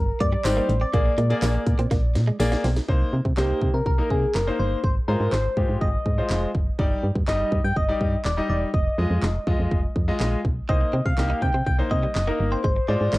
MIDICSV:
0, 0, Header, 1, 7, 480
1, 0, Start_track
1, 0, Key_signature, -3, "minor"
1, 0, Tempo, 487805
1, 920, Time_signature, 4, 2, 24, 8
1, 12973, End_track
2, 0, Start_track
2, 0, Title_t, "Soft synth lead"
2, 0, Program_c, 0, 80
2, 0, Note_on_c, 0, 70, 97
2, 202, Note_on_c, 0, 74, 107
2, 217, Note_off_c, 0, 70, 0
2, 439, Note_on_c, 0, 72, 100
2, 454, Note_off_c, 0, 74, 0
2, 795, Note_off_c, 0, 72, 0
2, 800, Note_on_c, 0, 74, 112
2, 2321, Note_off_c, 0, 74, 0
2, 3324, Note_on_c, 0, 67, 80
2, 3682, Note_on_c, 0, 70, 81
2, 3697, Note_off_c, 0, 67, 0
2, 3798, Note_off_c, 0, 70, 0
2, 3804, Note_on_c, 0, 70, 90
2, 4025, Note_off_c, 0, 70, 0
2, 4043, Note_on_c, 0, 68, 86
2, 4265, Note_off_c, 0, 68, 0
2, 4281, Note_on_c, 0, 70, 93
2, 4522, Note_on_c, 0, 72, 97
2, 4537, Note_off_c, 0, 70, 0
2, 4756, Note_off_c, 0, 72, 0
2, 4762, Note_on_c, 0, 72, 96
2, 4869, Note_off_c, 0, 72, 0
2, 5000, Note_on_c, 0, 70, 92
2, 5223, Note_off_c, 0, 70, 0
2, 5238, Note_on_c, 0, 72, 106
2, 5685, Note_off_c, 0, 72, 0
2, 5719, Note_on_c, 0, 75, 99
2, 6400, Note_off_c, 0, 75, 0
2, 7162, Note_on_c, 0, 75, 96
2, 7521, Note_on_c, 0, 79, 101
2, 7536, Note_off_c, 0, 75, 0
2, 7636, Note_off_c, 0, 79, 0
2, 7642, Note_on_c, 0, 75, 95
2, 8087, Note_off_c, 0, 75, 0
2, 8121, Note_on_c, 0, 74, 96
2, 8344, Note_off_c, 0, 74, 0
2, 8360, Note_on_c, 0, 74, 86
2, 8468, Note_off_c, 0, 74, 0
2, 8600, Note_on_c, 0, 75, 97
2, 10001, Note_off_c, 0, 75, 0
2, 10519, Note_on_c, 0, 75, 104
2, 10879, Note_on_c, 0, 77, 106
2, 10893, Note_off_c, 0, 75, 0
2, 11234, Note_off_c, 0, 77, 0
2, 11239, Note_on_c, 0, 79, 106
2, 11463, Note_off_c, 0, 79, 0
2, 11477, Note_on_c, 0, 79, 103
2, 11586, Note_off_c, 0, 79, 0
2, 11717, Note_on_c, 0, 75, 102
2, 11942, Note_off_c, 0, 75, 0
2, 11957, Note_on_c, 0, 75, 101
2, 12317, Note_on_c, 0, 72, 89
2, 12331, Note_off_c, 0, 75, 0
2, 12430, Note_off_c, 0, 72, 0
2, 12436, Note_on_c, 0, 72, 92
2, 12661, Note_off_c, 0, 72, 0
2, 12675, Note_on_c, 0, 74, 94
2, 12973, Note_off_c, 0, 74, 0
2, 12973, End_track
3, 0, Start_track
3, 0, Title_t, "Grand piano"
3, 0, Program_c, 1, 0
3, 438, Note_on_c, 1, 55, 81
3, 441, Note_on_c, 1, 63, 72
3, 443, Note_on_c, 1, 74, 92
3, 676, Note_off_c, 1, 55, 0
3, 677, Note_off_c, 1, 63, 0
3, 679, Note_off_c, 1, 74, 0
3, 917, Note_on_c, 1, 58, 83
3, 920, Note_on_c, 1, 68, 79
3, 922, Note_on_c, 1, 74, 97
3, 1096, Note_off_c, 1, 58, 0
3, 1098, Note_off_c, 1, 68, 0
3, 1099, Note_off_c, 1, 74, 0
3, 1278, Note_on_c, 1, 58, 82
3, 1280, Note_on_c, 1, 68, 77
3, 1283, Note_on_c, 1, 74, 95
3, 1753, Note_off_c, 1, 58, 0
3, 1754, Note_off_c, 1, 68, 0
3, 1755, Note_off_c, 1, 74, 0
3, 2357, Note_on_c, 1, 58, 91
3, 2359, Note_on_c, 1, 68, 85
3, 2362, Note_on_c, 1, 74, 103
3, 2596, Note_off_c, 1, 58, 0
3, 2597, Note_off_c, 1, 68, 0
3, 2598, Note_off_c, 1, 74, 0
3, 2837, Note_on_c, 1, 58, 84
3, 2840, Note_on_c, 1, 63, 76
3, 2842, Note_on_c, 1, 72, 95
3, 3076, Note_off_c, 1, 58, 0
3, 3077, Note_off_c, 1, 63, 0
3, 3078, Note_off_c, 1, 72, 0
3, 3317, Note_on_c, 1, 58, 76
3, 3320, Note_on_c, 1, 63, 70
3, 3323, Note_on_c, 1, 72, 86
3, 3615, Note_off_c, 1, 58, 0
3, 3616, Note_off_c, 1, 63, 0
3, 3617, Note_off_c, 1, 72, 0
3, 3918, Note_on_c, 1, 58, 83
3, 3920, Note_on_c, 1, 63, 78
3, 3923, Note_on_c, 1, 70, 89
3, 4156, Note_off_c, 1, 58, 0
3, 4157, Note_off_c, 1, 63, 0
3, 4159, Note_off_c, 1, 70, 0
3, 4399, Note_on_c, 1, 58, 82
3, 4401, Note_on_c, 1, 63, 73
3, 4403, Note_on_c, 1, 72, 88
3, 4696, Note_off_c, 1, 58, 0
3, 4697, Note_off_c, 1, 63, 0
3, 4698, Note_off_c, 1, 72, 0
3, 4998, Note_on_c, 1, 56, 84
3, 5000, Note_on_c, 1, 65, 75
3, 5003, Note_on_c, 1, 72, 91
3, 5236, Note_off_c, 1, 56, 0
3, 5237, Note_off_c, 1, 65, 0
3, 5238, Note_off_c, 1, 72, 0
3, 5478, Note_on_c, 1, 56, 75
3, 5481, Note_on_c, 1, 65, 67
3, 5484, Note_on_c, 1, 67, 80
3, 5775, Note_off_c, 1, 56, 0
3, 5777, Note_off_c, 1, 65, 0
3, 5778, Note_off_c, 1, 67, 0
3, 6079, Note_on_c, 1, 56, 78
3, 6081, Note_on_c, 1, 65, 70
3, 6084, Note_on_c, 1, 72, 85
3, 6376, Note_off_c, 1, 56, 0
3, 6377, Note_off_c, 1, 65, 0
3, 6378, Note_off_c, 1, 72, 0
3, 6678, Note_on_c, 1, 55, 85
3, 6681, Note_on_c, 1, 63, 77
3, 6683, Note_on_c, 1, 74, 98
3, 6916, Note_off_c, 1, 55, 0
3, 6917, Note_off_c, 1, 63, 0
3, 6918, Note_off_c, 1, 74, 0
3, 7158, Note_on_c, 1, 55, 81
3, 7160, Note_on_c, 1, 63, 72
3, 7163, Note_on_c, 1, 75, 89
3, 7455, Note_off_c, 1, 55, 0
3, 7456, Note_off_c, 1, 63, 0
3, 7458, Note_off_c, 1, 75, 0
3, 7758, Note_on_c, 1, 55, 83
3, 7760, Note_on_c, 1, 63, 77
3, 7762, Note_on_c, 1, 74, 92
3, 7996, Note_off_c, 1, 55, 0
3, 7997, Note_off_c, 1, 63, 0
3, 7998, Note_off_c, 1, 74, 0
3, 8237, Note_on_c, 1, 55, 80
3, 8240, Note_on_c, 1, 63, 73
3, 8242, Note_on_c, 1, 75, 90
3, 8535, Note_off_c, 1, 55, 0
3, 8536, Note_off_c, 1, 63, 0
3, 8537, Note_off_c, 1, 75, 0
3, 8838, Note_on_c, 1, 56, 78
3, 8840, Note_on_c, 1, 65, 71
3, 8842, Note_on_c, 1, 75, 90
3, 9076, Note_off_c, 1, 56, 0
3, 9077, Note_off_c, 1, 65, 0
3, 9078, Note_off_c, 1, 75, 0
3, 9318, Note_on_c, 1, 56, 86
3, 9321, Note_on_c, 1, 65, 79
3, 9323, Note_on_c, 1, 75, 90
3, 9615, Note_off_c, 1, 56, 0
3, 9617, Note_off_c, 1, 65, 0
3, 9618, Note_off_c, 1, 75, 0
3, 9918, Note_on_c, 1, 56, 92
3, 9920, Note_on_c, 1, 65, 82
3, 9922, Note_on_c, 1, 75, 98
3, 10215, Note_off_c, 1, 56, 0
3, 10216, Note_off_c, 1, 65, 0
3, 10217, Note_off_c, 1, 75, 0
3, 10517, Note_on_c, 1, 58, 73
3, 10520, Note_on_c, 1, 63, 68
3, 10523, Note_on_c, 1, 72, 80
3, 10756, Note_off_c, 1, 58, 0
3, 10757, Note_off_c, 1, 63, 0
3, 10758, Note_off_c, 1, 72, 0
3, 10998, Note_on_c, 1, 58, 76
3, 11000, Note_on_c, 1, 63, 72
3, 11002, Note_on_c, 1, 67, 81
3, 11295, Note_off_c, 1, 58, 0
3, 11296, Note_off_c, 1, 63, 0
3, 11297, Note_off_c, 1, 67, 0
3, 11596, Note_on_c, 1, 58, 81
3, 11598, Note_on_c, 1, 63, 75
3, 11600, Note_on_c, 1, 72, 92
3, 11835, Note_off_c, 1, 58, 0
3, 11836, Note_off_c, 1, 63, 0
3, 11837, Note_off_c, 1, 72, 0
3, 12076, Note_on_c, 1, 58, 81
3, 12078, Note_on_c, 1, 63, 73
3, 12081, Note_on_c, 1, 70, 89
3, 12374, Note_off_c, 1, 58, 0
3, 12375, Note_off_c, 1, 63, 0
3, 12377, Note_off_c, 1, 70, 0
3, 12677, Note_on_c, 1, 56, 80
3, 12679, Note_on_c, 1, 65, 79
3, 12682, Note_on_c, 1, 72, 95
3, 12915, Note_off_c, 1, 56, 0
3, 12916, Note_off_c, 1, 65, 0
3, 12918, Note_off_c, 1, 72, 0
3, 12973, End_track
4, 0, Start_track
4, 0, Title_t, "Clean electric guitar"
4, 0, Program_c, 2, 27
4, 200, Note_on_c, 2, 58, 85
4, 297, Note_off_c, 2, 58, 0
4, 319, Note_on_c, 2, 55, 77
4, 417, Note_off_c, 2, 55, 0
4, 559, Note_on_c, 2, 58, 79
4, 657, Note_off_c, 2, 58, 0
4, 798, Note_on_c, 2, 60, 78
4, 897, Note_off_c, 2, 60, 0
4, 919, Note_on_c, 2, 58, 82
4, 1017, Note_off_c, 2, 58, 0
4, 1159, Note_on_c, 2, 56, 88
4, 1257, Note_off_c, 2, 56, 0
4, 1399, Note_on_c, 2, 58, 74
4, 1497, Note_off_c, 2, 58, 0
4, 1760, Note_on_c, 2, 60, 78
4, 1858, Note_off_c, 2, 60, 0
4, 1880, Note_on_c, 2, 58, 91
4, 1978, Note_off_c, 2, 58, 0
4, 2239, Note_on_c, 2, 56, 87
4, 2337, Note_off_c, 2, 56, 0
4, 2479, Note_on_c, 2, 58, 70
4, 2577, Note_off_c, 2, 58, 0
4, 2600, Note_on_c, 2, 60, 73
4, 2698, Note_off_c, 2, 60, 0
4, 10519, Note_on_c, 2, 60, 80
4, 10617, Note_off_c, 2, 60, 0
4, 10759, Note_on_c, 2, 60, 76
4, 10857, Note_off_c, 2, 60, 0
4, 11119, Note_on_c, 2, 63, 76
4, 11217, Note_off_c, 2, 63, 0
4, 11359, Note_on_c, 2, 60, 69
4, 11457, Note_off_c, 2, 60, 0
4, 11719, Note_on_c, 2, 58, 81
4, 11817, Note_off_c, 2, 58, 0
4, 11840, Note_on_c, 2, 55, 73
4, 11938, Note_off_c, 2, 55, 0
4, 12078, Note_on_c, 2, 58, 78
4, 12177, Note_off_c, 2, 58, 0
4, 12319, Note_on_c, 2, 60, 77
4, 12417, Note_off_c, 2, 60, 0
4, 12440, Note_on_c, 2, 56, 81
4, 12537, Note_off_c, 2, 56, 0
4, 12679, Note_on_c, 2, 56, 82
4, 12777, Note_off_c, 2, 56, 0
4, 12919, Note_on_c, 2, 58, 67
4, 12973, Note_off_c, 2, 58, 0
4, 12973, End_track
5, 0, Start_track
5, 0, Title_t, "FM bass"
5, 0, Program_c, 3, 39
5, 0, Note_on_c, 3, 31, 113
5, 117, Note_off_c, 3, 31, 0
5, 200, Note_on_c, 3, 43, 100
5, 356, Note_off_c, 3, 43, 0
5, 439, Note_on_c, 3, 32, 89
5, 595, Note_off_c, 3, 32, 0
5, 678, Note_on_c, 3, 33, 103
5, 835, Note_off_c, 3, 33, 0
5, 920, Note_on_c, 3, 34, 103
5, 1076, Note_off_c, 3, 34, 0
5, 1159, Note_on_c, 3, 46, 99
5, 1316, Note_off_c, 3, 46, 0
5, 1399, Note_on_c, 3, 34, 106
5, 1555, Note_off_c, 3, 34, 0
5, 1639, Note_on_c, 3, 46, 100
5, 1718, Note_off_c, 3, 46, 0
5, 1760, Note_on_c, 3, 46, 94
5, 1838, Note_off_c, 3, 46, 0
5, 1879, Note_on_c, 3, 34, 104
5, 2120, Note_on_c, 3, 46, 111
5, 2134, Note_off_c, 3, 34, 0
5, 2276, Note_off_c, 3, 46, 0
5, 2359, Note_on_c, 3, 34, 97
5, 2515, Note_off_c, 3, 34, 0
5, 2599, Note_on_c, 3, 35, 94
5, 2756, Note_off_c, 3, 35, 0
5, 2839, Note_on_c, 3, 36, 116
5, 2995, Note_off_c, 3, 36, 0
5, 3081, Note_on_c, 3, 48, 94
5, 3158, Note_off_c, 3, 48, 0
5, 3199, Note_on_c, 3, 48, 104
5, 3277, Note_off_c, 3, 48, 0
5, 3320, Note_on_c, 3, 36, 99
5, 3476, Note_off_c, 3, 36, 0
5, 3558, Note_on_c, 3, 48, 94
5, 3637, Note_off_c, 3, 48, 0
5, 3679, Note_on_c, 3, 48, 91
5, 3757, Note_off_c, 3, 48, 0
5, 3798, Note_on_c, 3, 36, 103
5, 3955, Note_off_c, 3, 36, 0
5, 4039, Note_on_c, 3, 48, 97
5, 4196, Note_off_c, 3, 48, 0
5, 4280, Note_on_c, 3, 30, 90
5, 4436, Note_off_c, 3, 30, 0
5, 4521, Note_on_c, 3, 31, 92
5, 4676, Note_off_c, 3, 31, 0
5, 4759, Note_on_c, 3, 32, 110
5, 4915, Note_off_c, 3, 32, 0
5, 5000, Note_on_c, 3, 44, 102
5, 5078, Note_off_c, 3, 44, 0
5, 5120, Note_on_c, 3, 44, 98
5, 5198, Note_off_c, 3, 44, 0
5, 5239, Note_on_c, 3, 32, 103
5, 5395, Note_off_c, 3, 32, 0
5, 5480, Note_on_c, 3, 44, 97
5, 5558, Note_off_c, 3, 44, 0
5, 5600, Note_on_c, 3, 44, 96
5, 5678, Note_off_c, 3, 44, 0
5, 5720, Note_on_c, 3, 32, 104
5, 5876, Note_off_c, 3, 32, 0
5, 5959, Note_on_c, 3, 44, 103
5, 6116, Note_off_c, 3, 44, 0
5, 6199, Note_on_c, 3, 29, 86
5, 6355, Note_off_c, 3, 29, 0
5, 6442, Note_on_c, 3, 30, 89
5, 6597, Note_off_c, 3, 30, 0
5, 6680, Note_on_c, 3, 31, 112
5, 6836, Note_off_c, 3, 31, 0
5, 6920, Note_on_c, 3, 43, 99
5, 6998, Note_off_c, 3, 43, 0
5, 7040, Note_on_c, 3, 43, 98
5, 7118, Note_off_c, 3, 43, 0
5, 7162, Note_on_c, 3, 31, 92
5, 7317, Note_off_c, 3, 31, 0
5, 7399, Note_on_c, 3, 43, 94
5, 7478, Note_off_c, 3, 43, 0
5, 7520, Note_on_c, 3, 43, 99
5, 7598, Note_off_c, 3, 43, 0
5, 7639, Note_on_c, 3, 31, 100
5, 7795, Note_off_c, 3, 31, 0
5, 7879, Note_on_c, 3, 43, 99
5, 8035, Note_off_c, 3, 43, 0
5, 8118, Note_on_c, 3, 27, 84
5, 8275, Note_off_c, 3, 27, 0
5, 8359, Note_on_c, 3, 28, 88
5, 8515, Note_off_c, 3, 28, 0
5, 8599, Note_on_c, 3, 29, 108
5, 8755, Note_off_c, 3, 29, 0
5, 8839, Note_on_c, 3, 41, 103
5, 8917, Note_off_c, 3, 41, 0
5, 8958, Note_on_c, 3, 41, 96
5, 9037, Note_off_c, 3, 41, 0
5, 9078, Note_on_c, 3, 29, 100
5, 9235, Note_off_c, 3, 29, 0
5, 9319, Note_on_c, 3, 41, 98
5, 9397, Note_off_c, 3, 41, 0
5, 9439, Note_on_c, 3, 41, 98
5, 9517, Note_off_c, 3, 41, 0
5, 9559, Note_on_c, 3, 29, 102
5, 9715, Note_off_c, 3, 29, 0
5, 9799, Note_on_c, 3, 41, 100
5, 9956, Note_off_c, 3, 41, 0
5, 10040, Note_on_c, 3, 34, 90
5, 10196, Note_off_c, 3, 34, 0
5, 10281, Note_on_c, 3, 35, 86
5, 10436, Note_off_c, 3, 35, 0
5, 10519, Note_on_c, 3, 36, 107
5, 10676, Note_off_c, 3, 36, 0
5, 10759, Note_on_c, 3, 48, 94
5, 10837, Note_off_c, 3, 48, 0
5, 10879, Note_on_c, 3, 48, 97
5, 10957, Note_off_c, 3, 48, 0
5, 10998, Note_on_c, 3, 36, 95
5, 11155, Note_off_c, 3, 36, 0
5, 11239, Note_on_c, 3, 48, 92
5, 11317, Note_off_c, 3, 48, 0
5, 11358, Note_on_c, 3, 48, 90
5, 11437, Note_off_c, 3, 48, 0
5, 11479, Note_on_c, 3, 36, 102
5, 11635, Note_off_c, 3, 36, 0
5, 11719, Note_on_c, 3, 48, 99
5, 11875, Note_off_c, 3, 48, 0
5, 11961, Note_on_c, 3, 30, 92
5, 12116, Note_off_c, 3, 30, 0
5, 12199, Note_on_c, 3, 31, 93
5, 12356, Note_off_c, 3, 31, 0
5, 12438, Note_on_c, 3, 32, 107
5, 12595, Note_off_c, 3, 32, 0
5, 12679, Note_on_c, 3, 44, 98
5, 12757, Note_off_c, 3, 44, 0
5, 12800, Note_on_c, 3, 44, 93
5, 12878, Note_off_c, 3, 44, 0
5, 12920, Note_on_c, 3, 32, 104
5, 12973, Note_off_c, 3, 32, 0
5, 12973, End_track
6, 0, Start_track
6, 0, Title_t, "Muted clean electric guitar strokes"
6, 678, Note_on_c, 9, 29, 45
6, 777, Note_off_c, 9, 29, 0
6, 1039, Note_on_c, 9, 29, 47
6, 1137, Note_off_c, 9, 29, 0
6, 1520, Note_on_c, 9, 29, 45
6, 1619, Note_off_c, 9, 29, 0
6, 2120, Note_on_c, 9, 29, 46
6, 2218, Note_off_c, 9, 29, 0
6, 2359, Note_on_c, 9, 29, 43
6, 2458, Note_off_c, 9, 29, 0
6, 10639, Note_on_c, 9, 29, 46
6, 10738, Note_off_c, 9, 29, 0
6, 11238, Note_on_c, 9, 29, 44
6, 11337, Note_off_c, 9, 29, 0
6, 11480, Note_on_c, 9, 29, 43
6, 11578, Note_off_c, 9, 29, 0
6, 12200, Note_on_c, 9, 29, 44
6, 12298, Note_off_c, 9, 29, 0
6, 12560, Note_on_c, 9, 29, 48
6, 12658, Note_off_c, 9, 29, 0
6, 12973, End_track
7, 0, Start_track
7, 0, Title_t, "Drums"
7, 201, Note_on_c, 9, 36, 85
7, 201, Note_on_c, 9, 42, 78
7, 299, Note_off_c, 9, 36, 0
7, 300, Note_off_c, 9, 42, 0
7, 439, Note_on_c, 9, 39, 124
7, 441, Note_on_c, 9, 54, 90
7, 442, Note_on_c, 9, 42, 85
7, 450, Note_on_c, 9, 38, 94
7, 537, Note_off_c, 9, 39, 0
7, 540, Note_off_c, 9, 54, 0
7, 541, Note_off_c, 9, 42, 0
7, 548, Note_off_c, 9, 38, 0
7, 683, Note_on_c, 9, 42, 71
7, 781, Note_off_c, 9, 42, 0
7, 920, Note_on_c, 9, 36, 121
7, 920, Note_on_c, 9, 42, 75
7, 1018, Note_off_c, 9, 36, 0
7, 1019, Note_off_c, 9, 42, 0
7, 1160, Note_on_c, 9, 42, 79
7, 1259, Note_off_c, 9, 42, 0
7, 1283, Note_on_c, 9, 42, 47
7, 1381, Note_off_c, 9, 42, 0
7, 1400, Note_on_c, 9, 42, 106
7, 1400, Note_on_c, 9, 54, 76
7, 1401, Note_on_c, 9, 39, 114
7, 1411, Note_on_c, 9, 38, 94
7, 1499, Note_off_c, 9, 39, 0
7, 1499, Note_off_c, 9, 42, 0
7, 1499, Note_off_c, 9, 54, 0
7, 1510, Note_off_c, 9, 38, 0
7, 1639, Note_on_c, 9, 36, 94
7, 1639, Note_on_c, 9, 42, 76
7, 1737, Note_off_c, 9, 42, 0
7, 1738, Note_off_c, 9, 36, 0
7, 1760, Note_on_c, 9, 42, 64
7, 1858, Note_off_c, 9, 42, 0
7, 1880, Note_on_c, 9, 36, 93
7, 1880, Note_on_c, 9, 38, 60
7, 1880, Note_on_c, 9, 42, 97
7, 1978, Note_off_c, 9, 36, 0
7, 1978, Note_off_c, 9, 38, 0
7, 1979, Note_off_c, 9, 42, 0
7, 2119, Note_on_c, 9, 42, 75
7, 2120, Note_on_c, 9, 38, 74
7, 2218, Note_off_c, 9, 38, 0
7, 2218, Note_off_c, 9, 42, 0
7, 2360, Note_on_c, 9, 38, 89
7, 2361, Note_on_c, 9, 42, 86
7, 2361, Note_on_c, 9, 54, 88
7, 2458, Note_off_c, 9, 38, 0
7, 2459, Note_off_c, 9, 42, 0
7, 2459, Note_off_c, 9, 54, 0
7, 2479, Note_on_c, 9, 38, 84
7, 2578, Note_off_c, 9, 38, 0
7, 2600, Note_on_c, 9, 38, 108
7, 2601, Note_on_c, 9, 46, 74
7, 2698, Note_off_c, 9, 38, 0
7, 2700, Note_off_c, 9, 46, 0
7, 2719, Note_on_c, 9, 38, 99
7, 2818, Note_off_c, 9, 38, 0
7, 2839, Note_on_c, 9, 36, 121
7, 2938, Note_off_c, 9, 36, 0
7, 3199, Note_on_c, 9, 36, 88
7, 3297, Note_off_c, 9, 36, 0
7, 3318, Note_on_c, 9, 39, 108
7, 3329, Note_on_c, 9, 38, 89
7, 3417, Note_off_c, 9, 39, 0
7, 3428, Note_off_c, 9, 38, 0
7, 3558, Note_on_c, 9, 36, 91
7, 3657, Note_off_c, 9, 36, 0
7, 3799, Note_on_c, 9, 36, 91
7, 3897, Note_off_c, 9, 36, 0
7, 4039, Note_on_c, 9, 36, 83
7, 4138, Note_off_c, 9, 36, 0
7, 4277, Note_on_c, 9, 39, 113
7, 4288, Note_on_c, 9, 38, 90
7, 4376, Note_off_c, 9, 39, 0
7, 4387, Note_off_c, 9, 38, 0
7, 4759, Note_on_c, 9, 36, 114
7, 4858, Note_off_c, 9, 36, 0
7, 5240, Note_on_c, 9, 39, 110
7, 5251, Note_on_c, 9, 38, 93
7, 5338, Note_off_c, 9, 39, 0
7, 5349, Note_off_c, 9, 38, 0
7, 5479, Note_on_c, 9, 36, 93
7, 5578, Note_off_c, 9, 36, 0
7, 5720, Note_on_c, 9, 36, 93
7, 5818, Note_off_c, 9, 36, 0
7, 5960, Note_on_c, 9, 36, 82
7, 6058, Note_off_c, 9, 36, 0
7, 6196, Note_on_c, 9, 39, 112
7, 6207, Note_on_c, 9, 38, 89
7, 6295, Note_off_c, 9, 39, 0
7, 6306, Note_off_c, 9, 38, 0
7, 6441, Note_on_c, 9, 36, 98
7, 6540, Note_off_c, 9, 36, 0
7, 6680, Note_on_c, 9, 36, 119
7, 6778, Note_off_c, 9, 36, 0
7, 7040, Note_on_c, 9, 36, 89
7, 7138, Note_off_c, 9, 36, 0
7, 7159, Note_on_c, 9, 39, 112
7, 7170, Note_on_c, 9, 38, 94
7, 7257, Note_off_c, 9, 39, 0
7, 7269, Note_off_c, 9, 38, 0
7, 7399, Note_on_c, 9, 36, 89
7, 7498, Note_off_c, 9, 36, 0
7, 7639, Note_on_c, 9, 36, 86
7, 7738, Note_off_c, 9, 36, 0
7, 7879, Note_on_c, 9, 36, 83
7, 7978, Note_off_c, 9, 36, 0
7, 8116, Note_on_c, 9, 39, 112
7, 8127, Note_on_c, 9, 38, 91
7, 8215, Note_off_c, 9, 39, 0
7, 8226, Note_off_c, 9, 38, 0
7, 8599, Note_on_c, 9, 36, 117
7, 8697, Note_off_c, 9, 36, 0
7, 9079, Note_on_c, 9, 39, 112
7, 9090, Note_on_c, 9, 38, 89
7, 9177, Note_off_c, 9, 39, 0
7, 9188, Note_off_c, 9, 38, 0
7, 9319, Note_on_c, 9, 36, 95
7, 9417, Note_off_c, 9, 36, 0
7, 9559, Note_on_c, 9, 36, 91
7, 9657, Note_off_c, 9, 36, 0
7, 9799, Note_on_c, 9, 36, 80
7, 9897, Note_off_c, 9, 36, 0
7, 10037, Note_on_c, 9, 39, 110
7, 10048, Note_on_c, 9, 38, 89
7, 10135, Note_off_c, 9, 39, 0
7, 10146, Note_off_c, 9, 38, 0
7, 10281, Note_on_c, 9, 36, 92
7, 10379, Note_off_c, 9, 36, 0
7, 10519, Note_on_c, 9, 36, 121
7, 10617, Note_off_c, 9, 36, 0
7, 10879, Note_on_c, 9, 36, 91
7, 10977, Note_off_c, 9, 36, 0
7, 11000, Note_on_c, 9, 39, 109
7, 11011, Note_on_c, 9, 38, 90
7, 11098, Note_off_c, 9, 39, 0
7, 11109, Note_off_c, 9, 38, 0
7, 11239, Note_on_c, 9, 36, 90
7, 11337, Note_off_c, 9, 36, 0
7, 11479, Note_on_c, 9, 36, 88
7, 11577, Note_off_c, 9, 36, 0
7, 11719, Note_on_c, 9, 36, 81
7, 11817, Note_off_c, 9, 36, 0
7, 11958, Note_on_c, 9, 39, 118
7, 11969, Note_on_c, 9, 38, 89
7, 12056, Note_off_c, 9, 39, 0
7, 12067, Note_off_c, 9, 38, 0
7, 12439, Note_on_c, 9, 36, 117
7, 12537, Note_off_c, 9, 36, 0
7, 12919, Note_on_c, 9, 39, 114
7, 12930, Note_on_c, 9, 38, 93
7, 12973, Note_off_c, 9, 38, 0
7, 12973, Note_off_c, 9, 39, 0
7, 12973, End_track
0, 0, End_of_file